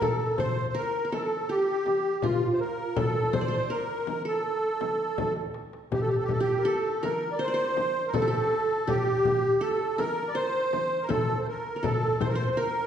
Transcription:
Already playing: G4
0.01 A4, frame drum, darbuka dum
0.38 C5, frame drum, darbuka dum
0.69 C5
0.74 A#4
1.05 A#4
1.12 A4, darbuka tek, frame drum
1.49 G4
1.86 darbuka tek, frame drum
2.22 F4, frame drum, darbuka dum
2.53 C5
2.60 A#4
2.96 A4, frame drum, darbuka dum
3.33 C5, darbuka dum, frame drum
3.41 D5
3.48 C5
3.52 darbuka ka
3.70 A#4
4.07 darbuka tek, frame drum
4.25 A4, darbuka ka
4.44 darbuka ka
4.81 darbuka tek, frame drum
5.18 darbuka tek, frame drum
5.36 darbuka ka
5.54 darbuka tek
5.73 darbuka ka
5.92 G4, darbuka dum, frame drum
6.01 A4
6.08 G4
6.16 A4
6.23 G4
6.28 A4, darbuka dum, frame drum
6.40 G4
6.58 A#4
6.65 A4
7.03 A#4, darbuka tek, frame drum
7.32 D5
7.39 C5, darbuka ka
7.48 D5
7.54 C5
7.77 darbuka tek, frame drum
8.07 A#4
8.13 A4, darbuka dum, frame drum
8.22 G4
8.28 A4
8.87 G4, darbuka dum, frame drum
9.25 darbuka dum, frame drum
9.61 A4
9.98 A#4, darbuka tek, frame drum
10.28 D5
10.35 C5, darbuka ka
10.73 darbuka tek, frame drum
11.02 A#4
11.09 A4, darbuka dum, frame drum
11.40 C5
11.48 A#4
11.76 A#4
11.83 A4, frame drum, darbuka dum
12.21 C5, frame drum, darbuka dum
12.28 A#4
12.35 C5
12.51 C5
12.57 A#4

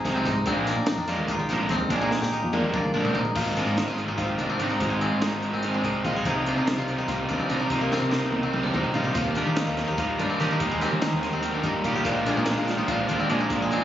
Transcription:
Already playing: F3 C4 D#4 F4 G4 G#4
0.05 C2 C3 F3 G#3 C4 D#4, kick, snare, closed hi-hat
0.15 C4
0.25 G#2 D#4, kick, snare, closed hi-hat
0.46 A#1 A#2 F3 G#3 A#3 C4 D4 D#4 G#4, kick, closed hi-hat
0.67 D4, snare, closed hi-hat
0.76 A#2
0.86 D#3 D#4, snare, closed hi-hat
0.97 F2 D4
1.08 A#2 F3 G#3 D4 D#4 F4, snare, closed hi-hat
1.19 D#2
1.28 D#4 F4, kick, closed hi-hat
1.39 G4
1.49 A#1 F2 A#2 F3 G#3 D4 D#4, kick, snare, closed hi-hat
1.69 D#2 C4 D#4, kick, snare, closed hi-hat
1.90 A#1 A#2 F3 G#3 A#3 D4 D#4 G#4, kick, closed hi-hat
2.01 D#4
2.11 snare
2.22 A#2 G4, snare
2.32 D#3 D#4
2.43 F2, high tom
2.53 A#2 F3 G#3 A#3 D4 D#4, high tom
2.63 D#2
2.74 D4 F4, kick, mid tom
2.84 mid tom
2.94 A#1 F2 A#2 F3 G#3 D4
3.04 C4, floor tom
3.15 A#1 D#4, floor tom
3.25 floor tom
3.35 G#1 G#2 D#3 G#3 C4 D#4 F4, kick, crash
3.56 G#3 C4 D4 D#4, closed hi-hat
3.66 G#2 D#4 F4
3.77 G#2 D#3 G#3 C4 D#4, snare, closed hi-hat
3.88 G#1 F4
3.97 D#3 G#3 C4 D#4, closed hi-hat
4.08 G#1 D#4
4.18 D#3 G#3 C4 D#4 F4, kick, closed hi-hat
4.38 C2 D#3 G#3 C4 D4 D#4, closed hi-hat
4.49 C4
4.59 G#2 D#3 G#3 C4 D4 D#4, closed hi-hat
4.70 D#4
4.80 G#1 G#2 D#3 G#3 C4 D#4, kick, closed hi-hat
4.90 G#3
5.01 G#3 C4 D#4 F4, closed hi-hat
5.12 G#2
5.22 G#2 D#3 G#3 C4 D#4, snare, closed hi-hat
5.33 G#1
5.42 D#3 G#3 C4 D#4, closed hi-hat
5.53 G#1 C4
5.62 D#3 G#3 C4 D#4, closed hi-hat
5.74 D4
5.84 C2 D#3 G#3 C4 D#4, kick, closed hi-hat
6.04 A#1 G#2 D#3 G#3 C4 D#4 F4, kick, closed hi-hat
6.16 G#4
6.25 C2 C3 G3 C4 D#4, kick, closed hi-hat
6.46 G3 C4 D4 D#4 F4, closed hi-hat
6.57 C3 D#4
6.67 C3 G3 C4 D#4, snare, closed hi-hat
6.78 C2 F4
6.88 D#3 G3 C4 D#4, closed hi-hat
6.98 C2 D#4
7.08 C3 G3 A#3 C4 D#4 F4, kick, closed hi-hat
7.29 D#2 G2 G3 C4 D4 D#4, closed hi-hat
7.39 C4
7.50 C3 G3 C4 D4 D#4, closed hi-hat
7.60 D#4
7.69 C2 C3 G3 C4 D#4, kick, closed hi-hat
7.81 A#3
7.91 G3 C4 D#4 F4, snare
8.02 C3
8.11 C3 G3 C4 D#4, snare
8.23 C2
8.32 D#3 G3 C4 D#4, high tom
8.43 C2 C4
8.52 C3 G3 C4 D#4, mid tom
8.63 A#3 D4, mid tom
8.73 D#2 G2 G3 C4 D#4, mid tom
8.84 floor tom
8.94 C3 G3 C4 D#4 F4, floor tom
9.04 G4, floor tom
9.14 D#2 D#3 G3 A#3 D#4 F4, kick, closed hi-hat, splash
9.35 G3 A#3 D4 D#4 G4, closed hi-hat
9.46 D#3 D#4
9.56 D#3 G3 A#3 C4 D#4, snare, closed hi-hat
9.67 D#2 F4
9.76 D#3 G3 A#3 D#4, snare, closed hi-hat
9.88 D#2 D#4
9.98 D#3 G3 A#3 D#4 F4, kick, closed hi-hat
10.18 G2 A#2 G3 A#3 D4 D#4, closed hi-hat
10.30 C4
10.39 D#3 G3 A#3 D4 D#4 G4, snare, closed hi-hat
10.51 D#4
10.59 D#2 D#3 G3 A#3 D#4, kick, closed hi-hat
10.71 G#3
10.80 G3 A#3 C4 D#4 G4, snare, closed hi-hat
10.92 D#3
11.02 D#3 G3 A#3 C4 D#4, snare, closed hi-hat
11.13 D#2
11.22 D#3 G3 A#3 D#4, snare, closed hi-hat
11.33 D#2 C4
11.43 D#3 G3 A#3 D#4, closed hi-hat
11.54 D4
11.63 G2 A#2 G3 A#3 D#4, kick, closed hi-hat
11.84 B1 D#3 G3 A#3 D#4 F4 G4, kick, closed hi-hat
11.96 G4
12.05 A#1 A#2 F3 G#3 D4 F4, kick, closed hi-hat
12.26 F3 G#3 D4 G#4, closed hi-hat
12.37 A#2 D#4
12.45 A#2 F3 G#3 D4, snare, closed hi-hat
12.57 A#1 F4
12.67 D#3 F3 G#3 D4, snare, closed hi-hat
12.78 A#1 D#4
12.87 A#2 F3 G#3 A#3 D4 F4, kick, closed hi-hat
13.08 D#2 F2 F3 G#3 D4, closed hi-hat
13.19 C4
13.28 A#2 F3 G#3 D4 G#4, closed hi-hat
13.40 D#4
13.49 A#1 A#2 F3 G#3 D4, kick, closed hi-hat
13.62 G#3
13.70 F3 G#3 C4 D4 G#4, closed hi-hat

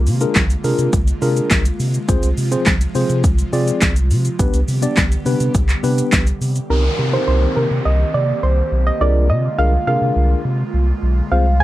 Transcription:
Already playing: D3 G#3 A#3 F4
0.07 C3, open hi-hat, shaker
0.21 D4 F4 G#4 A#4, closed hi-hat, shaker
0.35 C2, kick, snare, clap, closed hi-hat, shaker
0.50 closed hi-hat, shaker
0.64 C3 D4 F4 G#4 A#4, open hi-hat, shaker
0.79 C3, closed hi-hat, shaker
0.93 C2, kick, closed hi-hat, shaker
1.08 closed hi-hat, shaker
1.22 C3 D4 F4 G#4 A#4, open hi-hat, shaker
1.37 closed hi-hat, shaker
1.51 C2, kick, snare, clap, closed hi-hat, shaker
1.65 closed hi-hat, shaker
1.80 C3, open hi-hat, shaker
1.94 closed hi-hat, shaker
2.08 C2 C3 F3 C4 F4 G#4 C5, kick, closed hi-hat, shaker
2.23 C2, closed hi-hat, shaker
2.38 C3, open hi-hat, shaker
2.51 C4 F4 G#4 C5, closed hi-hat, shaker
2.66 C2, kick, snare, clap, closed hi-hat, shaker
2.81 closed hi-hat, shaker
2.95 C3 C4 F4 G#4 C5, open hi-hat, shaker
3.10 C3, closed hi-hat, shaker
3.24 C2, kick, closed hi-hat, shaker
3.39 closed hi-hat, shaker
3.53 C3 C4 F4 G#4 D5, open hi-hat, shaker
3.68 closed hi-hat, shaker
3.82 C2, kick, snare, clap, closed hi-hat, shaker
3.96 closed hi-hat, shaker
4.11 C3, open hi-hat, shaker
4.25 closed hi-hat, shaker
4.39 C2 D3 G3 B3 D4 G4 B4, kick, closed hi-hat, shaker
4.54 C2, closed hi-hat, shaker
4.68 C3, open hi-hat, shaker
4.82 B3 D4 G4 D5, closed hi-hat, shaker
4.97 C2, kick, snare, clap, closed hi-hat, shaker
5.12 closed hi-hat, shaker
5.25 C3 B3 D4 G4 B4, open hi-hat, shaker
5.40 C3, closed hi-hat, shaker
5.55 C2, kick, closed hi-hat, shaker
5.69 clap, closed hi-hat, shaker
5.83 C3 B3 D4 G4 B4, open hi-hat, shaker
5.98 closed hi-hat, shaker
6.12 C2, kick, snare, clap, closed hi-hat, shaker
6.27 closed hi-hat, shaker
6.41 C3, open hi-hat, shaker
6.56 closed hi-hat, shaker
6.70 C2 D#3 A#3 C4 D#4 G4 A#4, downlifter
6.99 C3 G4 A#4
7.13 C4 D#4 G4 A#4 C5
7.28 C2 C5
7.57 C3 A#4
7.71 C3
7.85 C2 D#5
8.14 C3 D5
8.43 C2 C5
8.72 B1
8.87 D#5
9.01 C2 D3 G#3 D4 F4 G#4 A#4 D5
9.30 C3 D#5
9.58 C2 D4 F4 G#4 A#4 F5
9.87 C3 D4 F4 G#4 A#4 F5
10.02 C3
10.16 C2
10.45 C3
10.74 C2
11.03 B1
11.31 C2 C3 F3 C4 F4 G#4 C5 F5
11.60 C3 G#4 G#5

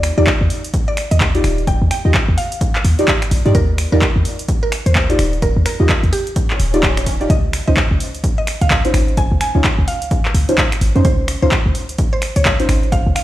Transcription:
Already playing: D#2 D#4 F4 G4 D5
0.03 finger snap, open hi-hat
0.18 D#2 D#4 F4 G4 D5
0.27 kick, clap
0.41 D#2
0.50 open hi-hat
0.64 closed hi-hat
0.74 kick, closed hi-hat
0.88 D5
0.97 finger snap, open hi-hat
1.11 D#2 D#5, closed hi-hat
1.20 kick, clap
1.35 D#4 F4 G4 D5, closed hi-hat
1.44 D#1, finger snap, open hi-hat
1.58 closed hi-hat
1.67 G5, kick, closed hi-hat
1.82 D#2
1.91 G5, finger snap, open hi-hat
2.05 D#2 D#4 F4 G4 D#5
2.14 kick, clap
2.28 D#2
2.38 F5, open hi-hat
2.52 closed hi-hat
2.61 kick, closed hi-hat
2.75 clap
2.85 D#2, open hi-hat
2.99 D#4 F4 G4 D5, closed hi-hat
3.08 kick, clap
3.22 finger snap, closed hi-hat
3.31 A#1, open hi-hat
3.46 G2 D#4 F4 G4 D5, closed hi-hat
3.55 D#2 A#4, kick, closed hi-hat
3.78 finger snap, open hi-hat
3.92 D#2 D#4 F4 G4 A#4 D5
4.02 kick, clap
4.16 D#2
4.25 open hi-hat
4.39 closed hi-hat
4.48 kick, closed hi-hat
4.63 A#4
4.72 finger snap, open hi-hat
4.86 D#2 C5, closed hi-hat
4.95 kick, clap
5.10 D#4 F4 G4 D5, closed hi-hat
5.19 D#1, finger snap, open hi-hat
5.33 closed hi-hat
5.42 A#4, kick, closed hi-hat
5.56 D#2
5.66 A#4, finger snap, open hi-hat
5.80 D#2 D#4 F4 G4 D#5
5.89 kick, clap
6.03 D#2, closed hi-hat
6.13 G4, open hi-hat
6.27 closed hi-hat
6.36 kick, closed hi-hat, swell
6.50 clap
6.60 D#1, open hi-hat
6.74 D#4 F4 G4 D5, closed hi-hat
6.83 kick, clap
6.97 finger snap, closed hi-hat
7.06 kick, open hi-hat
7.21 D#4 F4 G4 D5, closed hi-hat
7.30 C#2 D#5, kick, closed hi-hat
7.53 finger snap, open hi-hat
7.67 C#2 C#4 D#4 F4 C5 D#5
7.77 kick, clap
7.91 C#2
8.00 open hi-hat
8.15 closed hi-hat
8.24 kick, closed hi-hat
8.38 D#5
8.47 finger snap, open hi-hat
8.61 C#2 F5, closed hi-hat
8.70 kick, clap
8.85 C#4 D#4 F4 C5, closed hi-hat
8.94 G#1, finger snap, open hi-hat
9.08 closed hi-hat
9.17 G#5, kick, closed hi-hat
9.32 C#2
9.41 G#5, finger snap, open hi-hat
9.55 C#2 C#4 D#4 F4 C#5
9.64 kick, clap
9.79 C#2
9.88 F5, open hi-hat
10.02 closed hi-hat
10.11 kick, closed hi-hat
10.25 clap
10.34 C#2, open hi-hat
10.49 C#4 D#4 F4 C5, closed hi-hat
10.58 kick, clap
10.72 finger snap, closed hi-hat
10.81 G#1, open hi-hat
10.96 F2 C#4 D#4 F4 C5, closed hi-hat
11.05 C#2 C5, kick, closed hi-hat
11.28 finger snap, open hi-hat
11.42 C#2 C#4 D#4 F4 C5
11.51 kick, clap
11.66 C#2
11.75 open hi-hat
11.89 closed hi-hat
11.98 kick, closed hi-hat
12.13 C5
12.22 finger snap, open hi-hat
12.36 C#2 C#5, closed hi-hat
12.45 kick, clap
12.60 C#4 D#4 F4 C5, closed hi-hat
12.69 G#1, finger snap, open hi-hat
12.83 closed hi-hat
12.92 F5, kick, closed hi-hat
13.07 C#2
13.16 F5, finger snap, open hi-hat

